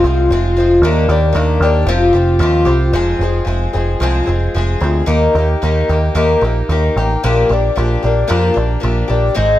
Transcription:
0.03 C2 F3 G#3 C4 F4
0.30 F1 F3 G#3 C4 F4
0.57 F3 G#3 C4 F4
0.82 D#2 D#3 A#3 D4 G4
1.08 D#2 A#3 D4 G4
1.33 D#2 D#3 A#3 D4 G4
1.60 D#2 D4 G4
1.65 A#3
1.85 F1 F2 C3 F3 C4 F4
1.90 G4
2.13 F1 F3 C4 F4 G4
2.39 D#2 F3 C4 F4 G4
2.65 C2 F3 C4 F4 G4
2.92 F1 F2 C3 F3 G#3 C4 G#4
3.19 F1 G#3 G#4
3.23 F3 C4
3.45 F1 F3 G#3 C4 G#4
3.73 F1 F3 G#3 C4 G#4
4.00 C2 F2 C3 F3 G#3 C4 G#4
4.26 F1 F3 G#3 C4 G#4
4.54 F1 F3 G#3 C4 G#4
4.80 D2 F3 G#3 C4 G#4
5.06 D#2 D#3 A#3 D#4 G4
5.35 D#2 D#4 G4
5.39 A#3
5.62 D#2 D#3 A#3 D#4 G4
5.89 D#2 A#3 D#4 G4
6.15 D#2 D#3 A#3 D#4 G4
6.41 A#1 A#3 D#4 G4
6.69 D#2 D#3 A#3 D#4 G4
6.96 A1 A#3 D#4 G4
7.23 A#1 A#2 F3 A#3 D4 G4
7.49 A#1 D4 G4
7.53 A#3
7.76 A#1 F3 A#3 D4 G4
8.03 A#1 A#3 D4 G4
8.28 F2 A#2 F3 A#3 D4 G4
8.54 A#1 A#3 D4 G4
8.80 A#1 F3 A#3 D4 G4
9.08 A#1 A#3 D4 G4
9.34 G#1 G#2 D#3 G#3 C4 D#4 G#4

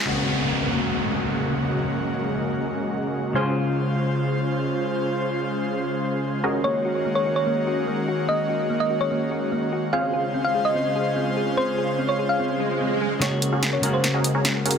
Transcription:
0.05 C#3 G#3 A#3 C#4 F#4 G#4 A#4 D#5, downlifter
3.33 C#3 G#3 C#4 F4 G#4 C5 F5
3.37 F4
6.44 D#3 A#3 C#4 F#4 G#4 A#4 D#5
6.64 A#3 C#5
6.85 F#4
7.05 A#3
7.15 C#5
7.26 F#4
7.36 C#5
7.47 A#3
7.67 F#4
7.88 A#3
8.08 F#4
8.29 A#3 D#5
8.49 F#4
8.70 A#3
8.80 D#5
8.90 F#4
9.01 C#5
9.11 A#3
9.31 F#4
9.52 A#3
9.73 F#4
9.93 C#3 G#3 C4 C#4 F4 G#4 C5 F5
10.13 G#4
10.34 C4
10.44 F5
10.55 G#4
10.65 D#5
10.75 C4
10.96 G#4
11.16 C4
11.37 G#4
11.57 C4 C5
11.78 G#4
11.99 C4
12.09 C#5
12.19 G#4
12.29 F5
12.39 C4, swell
12.60 G#4
12.81 C4
13.01 G#4
13.19 C#3 G#3 A#3 C#4 F#4 G#4 A#4 C#5 D#5, snare, closed hi-hat
13.24 F#4
13.42 closed hi-hat
13.52 C#4 F#4 G#4 A#4 F#5
13.63 snare, closed hi-hat
13.73 C#5
13.81 C#3 G#3 A#3 C#4 F#4 G#4 A#4 F5, closed hi-hat
13.85 F#4
13.94 C5
14.04 snare, closed hi-hat
14.14 C#4 F#4 G#4 A#4 D#5
14.24 closed hi-hat
14.35 C#4 F#4 G#4 A#4 C#5
14.45 snare, closed hi-hat
14.65 C#4 F#4 G#4 A#4 F5, closed hi-hat
14.71 closed hi-hat

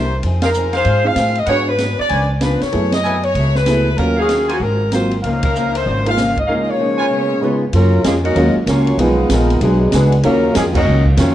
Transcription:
Already playing: C2 C3 G3 A#3 E4 C5
0.23 F2 F3 C4 D#4 G#4, ride
0.41 D#4 G#4 A#4 C5 F5, snare, ride
0.54 F3 C4 D#4 G#4, hi-hat pedal
0.73 D#4 G#4 C5 F5, snare, ride
0.85 G#2 F3 C4 D#4 G#4, ride
1.04 C4 D#4 F4 G#4 F5
1.16 A2 F3 C4 D#4 G#4, snare, hi-hat pedal, ride
1.35 D#5, ride
1.46 G#2 F#3 B3 D4 F#4 G#4 B4 C#5 F#5, ride
1.50 B3 D4
1.68 B4
1.78 G#2 F#3 B3 D4, snare, hi-hat pedal, ride
2.00 D5, muted upright bass stroke
2.09 C#2 C#3 F3 B3 D4 B4 C#5 G#5, ride
2.13 D4
2.40 C#3 F3 B3 D4 F4 B4, snare, hi-hat pedal, ride
2.61 C#5, muted upright bass stroke, snare, ride
2.72 F#2 F#3 A3 B3 E4 G#4 A4, ride
2.92 D#5, snare, ride
3.03 F#3 B3 E4 A4 B4 G#5, hi-hat pedal
3.08 A4
3.23 C#5, ride
3.35 C#2 F#3 B3 E4, ride
3.39 A4
3.55 B4, snare
3.66 F#3 A3 B3 E4 G#4, snare, hi-hat pedal, ride
3.70 A4
3.96 D#2 D#3 F#3 A#3 C#4 F4 A4 A#4, ride
4.00 F#3 C#4 F4
4.16 D#4 F#4 G#4 C#5 F5
4.29 D#3 F#3 C#4, snare, hi-hat pedal, ride
4.33 F4
4.48 F4 F#4 A#4 C5 G#5, ride
4.60 G#1 G#2 F#3 A#4
4.64 C4 F4
4.92 G#2 F#3 A#3 C4 F4 C5, snare, hi-hat pedal, ride
5.11 ride
5.22 C#2 C#3 F3 A#3 C#4 D#4 A#4 F5, ride
5.27 D#4
5.43 A#4, kick, ride
5.55 C#3 F3 A#3 D#4, hi-hat pedal
5.75 C5, ride
5.86 G#1 C#3 F3 A#3 D#4
6.06 G#3 A#3 D#4 F4 F5, ride
6.17 C#3 F3 A#3 D#4, snare, hi-hat pedal
6.37 D#5, kick, ride
6.47 C#3 F3 G#3 A#3 D#4 F4 A#4 C#5 F5
6.51 D#4
6.69 G#3 A#3 C#4 C#5
6.79 C#3 F3 A#3 D#4
6.98 F4 B4 C#5 G#5
7.10 C#3 G#3 B3 F4
7.41 C#3 G#3 B3 D#4 F4 G#4
7.73 F#2 C#3 F#3 A#3 C#4 F4 A#4, ride
8.03 F2 F3 F#3 G#3 A#3 C#4 F4 G#4, snare, hi-hat pedal, ride
8.24 F#3 A#3 C#4 D#4 F#4 A#4 D#5, ride
8.35 D#2 F#3 G#3 A#3 C#4 F4, ride
8.55 muted upright bass stroke
8.66 C#2 F#3 A#3 C#4 F4 F#4 C#5, snare, hi-hat pedal, ride
8.87 ride
8.97 B1 D#3 F3 G#3 B3 D#4 F4 G#4 B4, ride
9.29 A#1 D#3 F3 G#3 A#3 B3 D#4 F4 G#4 A#4, snare, hi-hat pedal, ride
9.50 ride
9.60 B1 B2 D3 E3 F#3 G#3 B3 D4 G#4, ride
9.65 C#5
9.92 C#2 D3 E3 G#3 B3 D4 F#4 G#4 B4 C#5, snare, hi-hat pedal, ride
10.12 ride
10.22 D#2 C#3 D#3 F#3 A#3 C#4 D#4 F4 A#4 F5, ride
10.54 F2 D#3 F3 F#3 G#3 A#3 C#4 F4 G#4, snare, hi-hat pedal, ride
10.73 F#3 A#3 C#4 D#4 F#4 A#4 D#5, kick, crash
10.85 C#2 D#3 F#3 C#4 F4
11.06 kick
11.17 F2 D#3 F#3 A#3 C#4 F4 F#4 C#5, snare, hi-hat pedal, ride

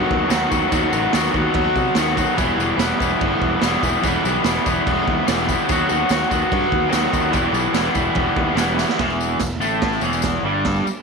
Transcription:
Already playing: D#3 F#3 B3 F#4
0.10 D#2, kick
0.28 D#2 D#3 F#3 B3 F#4, snare, tambourine, crash
0.49 D#2 F#3 B3 F#4, kick, tambourine
0.70 D#2 D#3 F#3 B3 F#4, kick, tambourine, crash
0.92 A1 F#3 B3 F#4, tambourine
1.12 D#2 D#3 F#3 B3 F#4, snare, tambourine, crash
1.32 D#2 F#3 B3 F#4, kick
1.54 D#2, kick, crash
1.75 C3, kick, tambourine
1.95 D#2 D#3 F#3 B3 F#4, snare, tambourine, crash
2.16 F#3 B3 F#4, kick, tambourine
2.37 E1 E3 G3 B3 E4, kick, tambourine, crash
2.57 E1 G3 B3 E4, tambourine
2.78 E1 E3 G3 B3 E4, snare, tambourine, crash
2.98 E1 G3 B3 E4, kick, tambourine
3.21 G1, kick, crash
3.41 E1, kick
3.61 E1 E3 G3 B3 E4, snare, tambourine, crash
3.83 E1 G3 B3 E4, kick, tambourine
4.03 E1 E3 G3 B3 E4, kick, tambourine, crash
4.24 B1 G3 B3 E4, tambourine
4.44 E1 E3 G3 B3 E4, snare, tambourine, crash
4.65 E1 G3 B3 E4, kick, tambourine
4.87 E1, kick, crash
5.07 D#2, kick
5.27 E1 E3 G3 B3 E4, snare, tambourine, crash
5.48 G3 B3 E4, kick, tambourine
5.68 D#2 D#3 F#3 B3, kick, tambourine, crash
5.72 F#4
5.88 D#2 F#3 B3 F#4, tambourine
6.09 D#2 D#3 F#3 B3 F#4, snare, tambourine, crash
6.30 D#2 F#3 B3 F#4, kick, tambourine
6.52 G2, kick, crash
6.72 D#2, kick
6.89 D#3 F#3 B3 F#4, snare, tambourine, crash
6.93 D#2
7.12 D#2 F#3 B3 F#4, kick, tambourine
7.31 E1 E3 G3 B3 E4, kick, tambourine, crash
7.51 B1 G3 B3 E4, tambourine
7.74 E1 E3 G3 B3, snare, tambourine, crash
7.78 E4
7.94 E1 G3 B3 E4, kick, tambourine
8.15 E1, kick, crash
8.36 D#2, kick
8.55 E1 E3 G3 B3 E4, snare, tambourine, crash
8.77 G3 B3 E4, snare, tambourine
8.89 snare
8.99 E1 E2 E3, kick, snare, tambourine, crash
9.10 tambourine
9.21 tambourine
9.40 E1 E2, kick, snare, tambourine, crash
9.51 tambourine
9.58 A1 A2 A3, tambourine
9.82 kick, snare, tambourine, crash
9.93 tambourine
10.01 E1 E2 E3, tambourine
10.13 tambourine
10.22 kick, snare, tambourine, crash
10.43 G1 G2 G3
10.65 kick, snare, tambourine, crash
10.76 tambourine
10.86 muted overdriven electric guitar stroke, tambourine

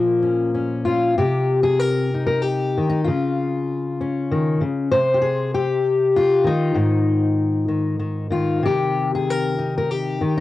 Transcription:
Already playing: A#2 F3 A#3 A#4
0.23 C#4
0.55 C#4
0.85 C#4 F4
1.18 C3 G4
1.63 G#4
1.79 A#4
2.14 D#4
2.26 A#4
2.42 G4
2.78 D#3
2.89 D#4
3.04 C#3 F4
4.01 C#4
4.31 D#3
4.61 C#3
4.91 C3 C5
5.14 G4
5.22 G#4
5.54 G4
6.16 F4
6.44 D#3 D#4
6.74 G#2 D#3
7.68 D#3
7.99 D#3
8.30 D#3 F4
8.63 C3 G4
9.15 G#4
9.30 A#4
9.58 D#4
9.78 A#4
9.91 G4
10.21 D#3

